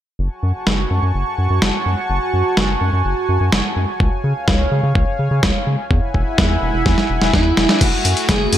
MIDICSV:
0, 0, Header, 1, 5, 480
1, 0, Start_track
1, 0, Key_signature, 3, "minor"
1, 0, Tempo, 476190
1, 194, Time_signature, 4, 2, 24, 8
1, 8648, End_track
2, 0, Start_track
2, 0, Title_t, "Analog synth pad"
2, 0, Program_c, 0, 89
2, 191, Note_on_c, 0, 85, 88
2, 192, Note_on_c, 0, 66, 78
2, 192, Note_on_c, 0, 78, 73
2, 192, Note_on_c, 0, 80, 71
2, 192, Note_on_c, 0, 81, 72
2, 3994, Note_off_c, 0, 66, 0
2, 3994, Note_off_c, 0, 78, 0
2, 3994, Note_off_c, 0, 81, 0
2, 3994, Note_off_c, 0, 85, 0
2, 4033, Note_on_c, 0, 73, 79
2, 4034, Note_on_c, 0, 77, 69
2, 5912, Note_off_c, 0, 80, 0
2, 5934, Note_off_c, 0, 73, 0
2, 5935, Note_off_c, 0, 77, 0
2, 5954, Note_on_c, 0, 78, 75
2, 5954, Note_on_c, 0, 80, 72
2, 5954, Note_on_c, 0, 83, 86
2, 5955, Note_on_c, 0, 64, 84
2, 5955, Note_on_c, 0, 76, 73
2, 7854, Note_off_c, 0, 80, 0
2, 7855, Note_off_c, 0, 64, 0
2, 7855, Note_off_c, 0, 76, 0
2, 7855, Note_off_c, 0, 78, 0
2, 7855, Note_off_c, 0, 83, 0
2, 7873, Note_on_c, 0, 66, 76
2, 7874, Note_on_c, 0, 57, 81
2, 7874, Note_on_c, 0, 80, 89
2, 8648, Note_off_c, 0, 57, 0
2, 8648, Note_off_c, 0, 66, 0
2, 8648, Note_off_c, 0, 80, 0
2, 8648, End_track
3, 0, Start_track
3, 0, Title_t, "Lead electric guitar"
3, 0, Program_c, 1, 29
3, 7396, Note_on_c, 1, 64, 79
3, 7876, Note_on_c, 1, 66, 78
3, 7889, Note_off_c, 1, 64, 0
3, 8321, Note_off_c, 1, 66, 0
3, 8356, Note_on_c, 1, 68, 84
3, 8648, Note_off_c, 1, 68, 0
3, 8648, End_track
4, 0, Start_track
4, 0, Title_t, "Analog synth bass"
4, 0, Program_c, 2, 38
4, 192, Note_on_c, 2, 30, 99
4, 289, Note_off_c, 2, 30, 0
4, 433, Note_on_c, 2, 42, 86
4, 529, Note_off_c, 2, 42, 0
4, 673, Note_on_c, 2, 30, 96
4, 865, Note_off_c, 2, 30, 0
4, 913, Note_on_c, 2, 42, 94
4, 1009, Note_off_c, 2, 42, 0
4, 1034, Note_on_c, 2, 42, 90
4, 1130, Note_off_c, 2, 42, 0
4, 1154, Note_on_c, 2, 30, 89
4, 1250, Note_off_c, 2, 30, 0
4, 1393, Note_on_c, 2, 42, 75
4, 1490, Note_off_c, 2, 42, 0
4, 1514, Note_on_c, 2, 42, 93
4, 1610, Note_off_c, 2, 42, 0
4, 1634, Note_on_c, 2, 30, 80
4, 1730, Note_off_c, 2, 30, 0
4, 1874, Note_on_c, 2, 42, 81
4, 1970, Note_off_c, 2, 42, 0
4, 2113, Note_on_c, 2, 30, 97
4, 2209, Note_off_c, 2, 30, 0
4, 2353, Note_on_c, 2, 42, 81
4, 2449, Note_off_c, 2, 42, 0
4, 2592, Note_on_c, 2, 30, 96
4, 2785, Note_off_c, 2, 30, 0
4, 2832, Note_on_c, 2, 42, 93
4, 2929, Note_off_c, 2, 42, 0
4, 2953, Note_on_c, 2, 42, 92
4, 3050, Note_off_c, 2, 42, 0
4, 3074, Note_on_c, 2, 30, 87
4, 3170, Note_off_c, 2, 30, 0
4, 3314, Note_on_c, 2, 42, 82
4, 3410, Note_off_c, 2, 42, 0
4, 3434, Note_on_c, 2, 42, 92
4, 3530, Note_off_c, 2, 42, 0
4, 3554, Note_on_c, 2, 30, 78
4, 3650, Note_off_c, 2, 30, 0
4, 3793, Note_on_c, 2, 42, 77
4, 3889, Note_off_c, 2, 42, 0
4, 4033, Note_on_c, 2, 37, 94
4, 4129, Note_off_c, 2, 37, 0
4, 4273, Note_on_c, 2, 49, 85
4, 4369, Note_off_c, 2, 49, 0
4, 4513, Note_on_c, 2, 37, 92
4, 4706, Note_off_c, 2, 37, 0
4, 4753, Note_on_c, 2, 49, 94
4, 4849, Note_off_c, 2, 49, 0
4, 4873, Note_on_c, 2, 49, 93
4, 4969, Note_off_c, 2, 49, 0
4, 4994, Note_on_c, 2, 37, 94
4, 5090, Note_off_c, 2, 37, 0
4, 5233, Note_on_c, 2, 49, 77
4, 5329, Note_off_c, 2, 49, 0
4, 5353, Note_on_c, 2, 49, 91
4, 5449, Note_off_c, 2, 49, 0
4, 5473, Note_on_c, 2, 37, 83
4, 5569, Note_off_c, 2, 37, 0
4, 5714, Note_on_c, 2, 49, 79
4, 5810, Note_off_c, 2, 49, 0
4, 5953, Note_on_c, 2, 40, 99
4, 6049, Note_off_c, 2, 40, 0
4, 6194, Note_on_c, 2, 28, 80
4, 6290, Note_off_c, 2, 28, 0
4, 6434, Note_on_c, 2, 40, 99
4, 6626, Note_off_c, 2, 40, 0
4, 6673, Note_on_c, 2, 28, 96
4, 6769, Note_off_c, 2, 28, 0
4, 6793, Note_on_c, 2, 28, 93
4, 6889, Note_off_c, 2, 28, 0
4, 6914, Note_on_c, 2, 40, 94
4, 7010, Note_off_c, 2, 40, 0
4, 7154, Note_on_c, 2, 28, 79
4, 7250, Note_off_c, 2, 28, 0
4, 7274, Note_on_c, 2, 28, 83
4, 7370, Note_off_c, 2, 28, 0
4, 7394, Note_on_c, 2, 40, 92
4, 7586, Note_off_c, 2, 40, 0
4, 7634, Note_on_c, 2, 28, 80
4, 7730, Note_off_c, 2, 28, 0
4, 7873, Note_on_c, 2, 30, 95
4, 7970, Note_off_c, 2, 30, 0
4, 8114, Note_on_c, 2, 42, 90
4, 8210, Note_off_c, 2, 42, 0
4, 8354, Note_on_c, 2, 30, 101
4, 8546, Note_off_c, 2, 30, 0
4, 8593, Note_on_c, 2, 42, 95
4, 8648, Note_off_c, 2, 42, 0
4, 8648, End_track
5, 0, Start_track
5, 0, Title_t, "Drums"
5, 673, Note_on_c, 9, 38, 103
5, 773, Note_off_c, 9, 38, 0
5, 1633, Note_on_c, 9, 38, 106
5, 1733, Note_off_c, 9, 38, 0
5, 2592, Note_on_c, 9, 38, 112
5, 2693, Note_off_c, 9, 38, 0
5, 3553, Note_on_c, 9, 38, 114
5, 3654, Note_off_c, 9, 38, 0
5, 4033, Note_on_c, 9, 36, 110
5, 4134, Note_off_c, 9, 36, 0
5, 4513, Note_on_c, 9, 36, 111
5, 4513, Note_on_c, 9, 38, 108
5, 4613, Note_off_c, 9, 38, 0
5, 4614, Note_off_c, 9, 36, 0
5, 4994, Note_on_c, 9, 36, 112
5, 5094, Note_off_c, 9, 36, 0
5, 5473, Note_on_c, 9, 38, 116
5, 5474, Note_on_c, 9, 36, 109
5, 5574, Note_off_c, 9, 36, 0
5, 5574, Note_off_c, 9, 38, 0
5, 5954, Note_on_c, 9, 36, 107
5, 6054, Note_off_c, 9, 36, 0
5, 6194, Note_on_c, 9, 36, 52
5, 6294, Note_off_c, 9, 36, 0
5, 6433, Note_on_c, 9, 38, 117
5, 6434, Note_on_c, 9, 36, 114
5, 6533, Note_off_c, 9, 38, 0
5, 6534, Note_off_c, 9, 36, 0
5, 6913, Note_on_c, 9, 38, 59
5, 6914, Note_on_c, 9, 36, 106
5, 7014, Note_off_c, 9, 38, 0
5, 7015, Note_off_c, 9, 36, 0
5, 7034, Note_on_c, 9, 38, 49
5, 7134, Note_off_c, 9, 38, 0
5, 7273, Note_on_c, 9, 38, 62
5, 7374, Note_off_c, 9, 38, 0
5, 7394, Note_on_c, 9, 36, 106
5, 7394, Note_on_c, 9, 38, 78
5, 7494, Note_off_c, 9, 38, 0
5, 7495, Note_off_c, 9, 36, 0
5, 7633, Note_on_c, 9, 38, 89
5, 7734, Note_off_c, 9, 38, 0
5, 7753, Note_on_c, 9, 38, 83
5, 7854, Note_off_c, 9, 38, 0
5, 7873, Note_on_c, 9, 42, 82
5, 7873, Note_on_c, 9, 49, 90
5, 7874, Note_on_c, 9, 36, 111
5, 7973, Note_off_c, 9, 42, 0
5, 7973, Note_off_c, 9, 49, 0
5, 7975, Note_off_c, 9, 36, 0
5, 8113, Note_on_c, 9, 42, 72
5, 8214, Note_off_c, 9, 42, 0
5, 8233, Note_on_c, 9, 42, 49
5, 8334, Note_off_c, 9, 42, 0
5, 8353, Note_on_c, 9, 38, 111
5, 8353, Note_on_c, 9, 42, 75
5, 8354, Note_on_c, 9, 36, 94
5, 8454, Note_off_c, 9, 38, 0
5, 8454, Note_off_c, 9, 42, 0
5, 8455, Note_off_c, 9, 36, 0
5, 8594, Note_on_c, 9, 42, 79
5, 8648, Note_off_c, 9, 42, 0
5, 8648, End_track
0, 0, End_of_file